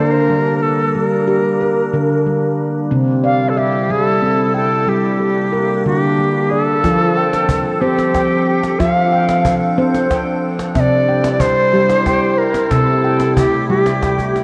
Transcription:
Already playing: D3 G3 A#3 D4 G4 A#4
0.30 G3
0.62 A4
0.94 G3 A4
1.05 A#4
1.28 G4
1.61 A#4
1.93 D3 A#4
2.26 G3
2.91 C3 G3 C4 E4
3.24 D5 F5
3.49 A4
3.57 G4 E5
3.90 G3 G#4
4.02 A4
4.22 C4
4.54 A4 G5
4.87 G3 A#3 D4 G4
5.20 A4
5.53 A#4
5.86 D3 A#3 F#4
5.99 G4
6.19 G3
6.50 G#4 D5
6.63 A4
6.84 F3 C4 F4 A4, cajon bass, cajon slap
7.17 G5
7.33 cajon slap
7.49 cajon bass
7.81 C4 G4 C5
7.99 cajon slap
8.14 G5, cajon bass, cajon slap
8.31 cajon slap
8.63 cajon slap
8.79 F3 D4 F4 E5, cajon bass, cajon slap
8.92 F5
9.13 G5
9.29 cajon slap
9.45 cajon bass
9.78 C4 C5
9.94 cajon slap
10.11 G5, cajon bass, cajon slap
10.27 cajon slap
10.59 cajon slap
10.75 C3 G3 C4 E4 E5, cajon bass, cajon slap
10.80 D5
11.09 G5
11.24 cajon slap
11.40 C5, cajon bass
11.74 G3 G4
11.90 cajon slap
12.06 G5, cajon bass, cajon slap
12.22 cajon slap
12.38 A#4
12.54 cajon slap
12.70 C3 A3 C4 A4, cajon bass, cajon slap
13.04 G5
13.20 cajon slap
13.37 G4, cajon bass
13.69 G3 G4, cajon slap
13.86 cajon slap
14.02 G5, cajon bass, cajon slap
14.19 cajon bass
14.36 cajon slap

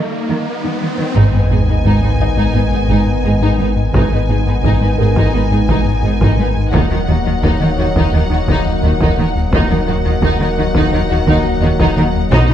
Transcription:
Already playing: G3 A#3 D#4 D#5, riser
0.29 D#3
0.64 D#3 D#4
0.81 D#3
0.98 D#3 G3
1.14 G#1 G#2 D#3 G#3 B3 D#4 D#5 G#5, taiko, sub drop
1.32 G#2 B3 D#4 B4
1.50 G#1 G#2 B3 D#4 G#4
1.67 G#2 B3 D#4 B4
1.84 G#1 G#2 G#3 D#4
2.02 G#2 G#3 D#4 B4
2.19 G#1 G#2 D#4 G#4 D#5
2.37 G#2 G#3 D#4
2.54 G#1 G#2 B3 D#4 B4
2.72 G#2 D#4 G#4
2.88 G#1 G#2 G#3 D#4
3.06 G#2
3.24 G#1 G#2 D#4 G#4
3.41 G#2 G#3 D#4
3.59 G#1 G#2 G#3 D#4 B4
3.76 G#2
3.93 G#1 G#2 D#3 G#3 B3 D#4 B4 D#5 G#5, taiko
4.11 G#2 B3 D#4 B4
4.29 G#1 G#2 B3 D#4 G#4
4.46 G#2 B3 D#4 B4
4.63 G#1 G#2 G#3 D#4, taiko
4.81 G#2 G#3 D#4 B4
4.98 G#1 G#2 D#4 G#4 A#4
5.16 G#2 G#3 D#4, taiko
5.33 G#1 G#2 B3 D#4 B4
5.51 G#2 D#4 G#4
5.68 G#1 G#2 G#3 D#4, taiko
5.85 G#2
6.03 G#1 G#2 D#4 G#4
6.21 G#2 G#3 D#4, taiko
6.37 G#1 G#2 G#3 D#4 B4
6.56 G#2
6.72 D#1 D#2 D#3 F#3 A#3 D#4 D#5 F#5, taiko
6.90 D#2 D#3 F#3 D#4 A#4
7.08 D#2 D#3 F#3 D#4 F#4
7.24 D#2 D#3 F#3 D#4 A#4
7.42 D#2 D#3 D#4, taiko
7.60 D#3 A#3 D#4 A#4
7.77 D#2 D#3 D#4 F#4 C#5
7.95 D#2 D#3 D#4, taiko
8.13 D#2 D#3 F#3 D#4 A#4
8.30 D#2 D#3 D#4 F#4
8.47 D#2 D#3 D#4, taiko
8.66 D#2
8.83 D#2 D#3 D#4 F#4
9.01 D#2 D#3 D#4, taiko
9.17 D#2 D#3 A#3 D#4 A#4
9.36 D#2
9.51 D#1 D#2 D#3 F#3 A#3 D#4 D#5 F#5, taiko
9.70 D#2 D#3 F#3 D#4 A#4
9.87 D#2 D#3 F#3 D#4 F#4
10.05 D#2 D#3 F#3 D#4 A#4
10.22 D#2 D#3 D#4, taiko
10.40 D#3 A#3 D#4 A#4
10.57 D#2 D#3 D#4 F#4
10.75 D#2 D#3 D#4, taiko
10.91 D#2 D#3 F#3 D#4 A#4
11.10 D#2 D#3 D#4 F#4
11.27 D#2 D#3 D#4, taiko
11.45 D#2
11.62 D#2 D#3 D#4 F#4
11.79 D#2 D#3 D#4, taiko
11.96 D#2 D#3 A#3 D#4 A#4
12.16 D#2
12.31 B1 B2 F#3 B3 D#4 B4 F#5, taiko
12.49 B2 D#4 B4

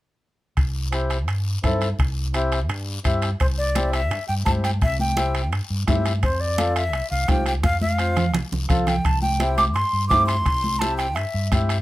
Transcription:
0.57 C2, bombo low, bombo rim, high timbale, long guiro
0.92 C4 E4 G4, bombo rim, high timbale, short guiro
1.10 bombo rim, high timbale, short guiro
1.28 G2, bombo rim, high timbale, long guiro
1.63 G2 C4 E4 A4, bombo low, bombo rim, high timbale, low timbale, short guiro
1.81 bombo rim, high timbale, short guiro
1.99 C2, bombo low, bombo rim, high timbale, long guiro
2.34 C4 E4 G4, bombo rim, high timbale, short guiro
2.52 bombo rim, high timbale, short guiro
2.69 G2, bombo rim, high timbale, long guiro
3.04 G2 C4 E4 G4, bombo low, bombo rim, high timbale, short guiro
3.22 bombo rim, high timbale, short guiro
3.40 C2 C5, bombo low, bombo rim, high conga, high timbale, long guiro
3.58 D5
3.75 C4 E4 G4, bombo rim, high conga, high timbale, short guiro
3.93 E5, bombo rim, high timbale, short guiro
4.11 G2, bombo rim, high conga, high timbale, long guiro
4.28 G2 G5
4.45 G2 C4 E4 G4 A5, bombo low, bombo rim, high conga, high timbale, short guiro
4.64 G5, bombo rim, high timbale, short guiro
4.81 C2 E5, bombo low, bombo rim, high conga, high timbale, long guiro
4.99 G5, high conga
5.16 C4 E4 G4, bombo rim, high conga, high timbale, short guiro
5.35 bombo rim, high timbale, short guiro
5.52 G2, bombo rim, high conga, high timbale, long guiro
5.70 G2
5.88 G2 C4 E4 G4, bombo low, bombo rim, high conga, high timbale, low timbale, short guiro
6.06 bombo rim, high timbale, short guiro
6.23 F2 C5, bombo low, bombo rim, high conga, high timbale, long guiro
6.40 D5
6.58 C4 F4 A4, bombo rim, high conga, high timbale, short guiro
6.76 E5, bombo rim, high timbale, short guiro
6.93 C2, bombo rim, high conga, high timbale, long guiro
7.10 C2 F5
7.28 C2 C4 F4 G4 G5, bombo low, bombo rim, high conga, high timbale, low timbale, short guiro
7.46 G5, bombo rim, high timbale, short guiro
7.63 F2 F5, bombo low, bombo rim, high conga, high timbale, long guiro
7.81 F5, high conga
7.98 C4 F4 C5, bombo rim, high timbale, short guiro
8.16 bombo rim, low conga, high timbale, short guiro
8.34 C2, bombo rim, low conga, high timbale, long guiro
8.52 C2, low conga
8.69 C2 C4 F4 A4, bombo low, bombo rim, low conga, high timbale, short guiro
8.87 G5, bombo rim, low conga, high timbale, short guiro
9.05 C2 A5, bombo low, bombo rim, high conga, high timbale, long guiro
9.22 G5, high conga
9.40 C4 E4 G4, bombo rim, high conga, high timbale, short guiro
9.58 D6, bombo rim, high conga, high timbale, short guiro
9.74 G2 C6, bombo rim, high conga, high timbale, long guiro
9.93 G2
10.09 G2 C4 E4 G4 D6, bombo low, bombo rim, high conga, high timbale, low timbale, short guiro
10.26 C6, bombo rim, high timbale, short guiro
10.46 C2, bombo low, bombo rim, high conga, high timbale, long guiro
10.64 high conga
10.79 C4 E4 G4 A5, bombo rim, high conga, high timbale, short guiro
10.97 G5, bombo rim, high timbale, short guiro
11.15 G2 E5, bombo rim, high conga, high timbale, long guiro
11.34 G2
11.52 G2 C4 E4 G4, bombo low, bombo rim, high conga, high timbale, short guiro
11.69 bombo rim, high timbale, short guiro

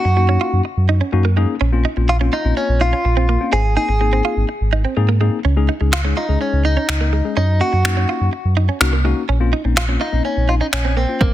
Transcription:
Already playing: F#4
0.05 F#2, muted clean electric guitar stroke
0.17 A#3 C#4 D#4 F#4, muted clean electric guitar stroke
0.29 C#4
0.41 F4
0.53 F#2
0.65 muted clean electric guitar stroke
0.77 F#2
0.89 D#4
1.01 C#4
1.12 F#2 A#3 C#4 D#4 F#4, muted clean electric guitar stroke
1.25 A#3
1.37 G#3 A#3 C#4 D#4 G#4
1.61 A#1 C#4
1.73 A#3 C4 C#4 F4
1.85 D#4
1.97 A#1 A#3 C4 C#4 F4, muted clean electric guitar stroke
2.09 F4, muted clean electric guitar stroke
2.21 A#3 C4 C#4 F4
2.33 D#4 F4
2.45 A#1 A#3 C4 C#4 F4
2.57 C#4, muted clean electric guitar stroke
2.69 A#1
2.81 D#4 F4
2.93 C#4
3.05 A#1, muted clean electric guitar stroke
3.17 C4
3.29 A#3
3.40 A#3 C4 C#4 F4
3.53 G#1 C4 G#4
3.77 A#3 C4 D#4 G#4
3.89 G#1, muted clean electric guitar stroke
4.01 A#3 C4 D#4 G#4, muted clean electric guitar stroke
4.13 C4
4.25 F4
4.37 G#1
4.49 muted clean electric guitar stroke
4.61 G#1
4.73 D#4
4.85 C4
4.97 G#2 A#3 C4 D#4 G#4, muted clean electric guitar stroke
5.09 A#3
5.21 G#3 A#3 C4 D#4 G#4
5.45 C#2 C#4
5.57 G#3 C#4 D#4 G#4
5.69 D#4
5.80 C#2 G#3 C#4 D#4 G#4, muted clean electric guitar stroke
5.93 F4, finger snap, muted clean electric guitar stroke
6.04 G#3 C#4 D#4 G#4
6.17 D#4 F4
6.29 C#2 G#3 C#4 D#4 G#4
6.41 C#4, muted clean electric guitar stroke
6.53 C#2
6.65 D#4
6.77 C#4
6.89 C#2, finger snap, muted clean electric guitar stroke
7.01 A#3
7.13 G#3
7.25 G#3 C#4 D#4 G#4
7.37 F#2 C#4 D#4
7.61 A#3 C#4 D#4 F#4
7.73 F#2, muted clean electric guitar stroke
7.85 A#3 C#4 D#4 F#4, finger snap, muted clean electric guitar stroke
7.97 C#4
8.09 F4
8.21 F#2
8.33 muted clean electric guitar stroke
8.45 F#2
8.57 D#4
8.69 C#4
8.80 C2 A#3 C#4 D#4 F#4, finger snap, muted clean electric guitar stroke
8.93 A#3
9.04 G#3 A#3 C#4 D#4 F#4
9.29 A#1 C#4
9.40 A#3 C4 C#4 F4
9.53 D#4
9.65 A#1 A#3 C4 C#4 D#4, muted clean electric guitar stroke
9.77 F4, finger snap, muted clean electric guitar stroke
9.88 A#3 C4 C#4 F4
10.01 D#4 F4
10.12 A#1 A#3 C4 C#4 D#4
10.25 C#4, muted clean electric guitar stroke
10.37 A#1
10.49 D#4 F4
10.61 C#4 D#4
10.73 A#1 C#4, finger snap, muted clean electric guitar stroke
10.85 C4
10.97 A#3 C4
11.08 A#3 C4 C#4 F4
11.21 G#1 A#3 C4, kick

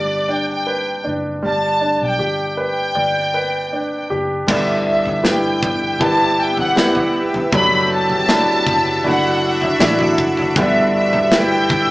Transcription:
Already playing: G1 G3 D4 B4 D5
0.28 D4
0.33 G5
0.51 G5
0.67 B4
1.04 F#1 D4
1.43 G1 G3 A5
1.81 D4
2.02 B1 G5
2.19 G1 G4
2.57 B4
2.63 G5
2.95 G1 D5
3.34 B4
3.73 D4
4.10 F#1 G4
4.46 G1 G2 D3 E3 G3 B3 G4 E5, kick, floor tom, crash
4.50 E4
4.88 E5
5.05 G1, floor tom
5.23 E4 G4 B4 G5, snare
5.62 G1, kick, floor tom
6.00 G1 E3 G3 B3 E4 G4 B4 A5, kick, floor tom
6.41 G5
6.57 F#5, floor tom
6.76 E3 G3 B3 E4 G4 B4, snare
6.95 floor tom
7.34 floor tom
7.52 F#1 F#3 A3 D4 E4 F#4 B5, kick, floor tom
7.94 A5
8.10 floor tom
8.28 F#3 A3 D4 E4 F#4, snare
8.66 F#1, kick, floor tom
9.04 F#1 F#3 A3 D4 E4 F#4 F#5, floor tom
9.62 E5, floor tom
9.79 A1 F#3 A3 D4 E4 F#4, snare
9.99 floor tom
10.18 F#1, kick
10.37 floor tom
10.55 G1 G2 D3 E3 G3 B3 E4 G4 E5, kick, floor tom
10.96 E5
11.12 G1, floor tom
11.32 E4 G4 B4 G5, snare
11.69 G1, kick, floor tom

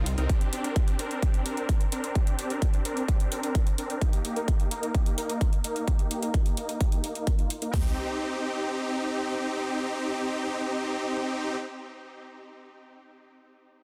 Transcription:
Already playing: C2
0.06 closed hi-hat
0.18 C2 C4 D#4 A#4, closed hi-hat
0.29 C4 D4 G4, kick, closed hi-hat
0.41 closed hi-hat
0.53 C4 D4 G4, closed hi-hat
0.64 C4 D4 A#4, closed hi-hat
0.76 C4 D4 G4, kick, closed hi-hat
0.88 closed hi-hat
0.99 C4 D4 A#4, closed hi-hat
1.11 closed hi-hat
1.22 C4 G4, kick, closed hi-hat
1.34 closed hi-hat
1.46 C4 D4 A#4, closed hi-hat
1.57 C4 D4 A#4, closed hi-hat
1.69 C4 D4 A#4, kick, closed hi-hat
1.81 closed hi-hat
1.92 C4 D4 A#4, closed hi-hat
2.04 closed hi-hat
2.15 C4 D4 G4, kick, closed hi-hat
2.27 closed hi-hat
2.39 C4 D4 G4, closed hi-hat
2.50 C4 D4 A#4, closed hi-hat
2.62 C4 D4, kick, closed hi-hat
2.74 closed hi-hat
2.85 C4 D4 A#4, closed hi-hat
2.97 closed hi-hat
3.08 C4 G4, kick, closed hi-hat
3.20 closed hi-hat
3.32 C4 D4 A#4, closed hi-hat
3.43 C4 D4 A#4, closed hi-hat
3.55 C4 D4 A#4, kick, closed hi-hat
3.67 closed hi-hat
3.78 C4 D4 A#4, closed hi-hat
3.90 closed hi-hat
4.01 A#3 D#4 G4, kick, closed hi-hat
4.13 closed hi-hat
4.25 A#3 D#4 G4, closed hi-hat
4.36 A#3 D#4 A#4, closed hi-hat
4.48 A#3 D#4 G4, kick, closed hi-hat
4.60 closed hi-hat
4.71 A#3 D#4 A#4, closed hi-hat
4.83 closed hi-hat
4.95 A#3 D#4 G4, kick, closed hi-hat
5.06 closed hi-hat
5.18 A#3 D#4 A#4, closed hi-hat
5.29 A#3 D#4 A#4, closed hi-hat
5.41 A#3 D#4, kick, closed hi-hat
5.53 closed hi-hat
5.64 A#3 D#4 A#4, closed hi-hat
5.76 closed hi-hat
5.88 G4, kick, closed hi-hat
5.99 closed hi-hat
6.11 A#3 D#4 G4, closed hi-hat
6.22 A#3 D#4 A#4, closed hi-hat
6.34 kick, closed hi-hat
6.46 closed hi-hat
6.57 A#3 D#4 A#4, closed hi-hat
6.69 closed hi-hat
6.81 G4, kick, closed hi-hat
6.92 closed hi-hat
7.04 A#3 D#4 A#4, closed hi-hat
7.15 A#3 D#4 A#4, closed hi-hat
7.27 kick, closed hi-hat
7.39 A#3 D#4 F4, closed hi-hat
7.50 closed hi-hat
7.62 A#3 D#4 A#4, closed hi-hat
7.74 C4 D#4 G4, kick, floor tom, open hi-hat

